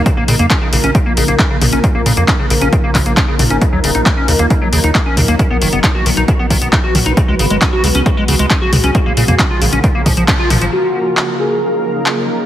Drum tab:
HH |x-oxx-oxx-oxx-ox|x-oxx-oxx-oxx-ox|x-oxx-oxx-oxx-ox|x-oxx-oxx-oxx-ox|
CP |----x-------x---|----x-----x-x---|----x-------x---|----x-------x---|
T2 |--------------o-|--------------o-|--------------o-|--------------o-|
BD |o---o---o---o---|o---o---o-o-o---|o---o---o---o---|o---o---o-o-o---|

HH |x-oxx-oxx-oxx-ox|x-oxx-oxx-oxx-ox|----------------|
CP |----x-------x---|----x-------x---|----x-------x---|
T2 |--------------o-|---o------o---o-|----------------|
BD |o---o---o---o---|o---o---o-o-o---|----------------|